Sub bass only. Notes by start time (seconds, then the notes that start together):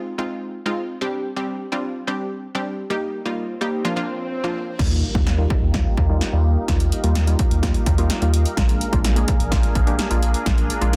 4.79 D#2
5.15 D#2
5.62 D#2
5.97 D#2
6.33 D#2
6.68 D#2
7.04 D#2
7.51 D#2
7.86 D#2
8.22 D#2
8.57 A#1
8.93 A#1
9.40 A#1
9.75 A#1
10.11 A#1
10.46 A#1
10.82 A#1